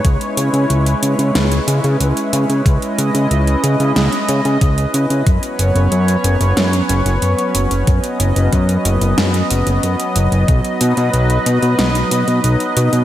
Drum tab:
HH |xxxxxxxxxxxxxxxx|xxxxxxxxxxxxxxxx|xxxxxxxxxxxxxxxx|xxxxxxxxxxxxxxxx|
SD |--------o-------|--------o-------|--------o-------|--------o-------|
BD |o---------------|o-----------o---|o---------------|o---o-----------|

HH |xxxxxxxxxxxxxxxx|
SD |--------o-------|
BD |o---------------|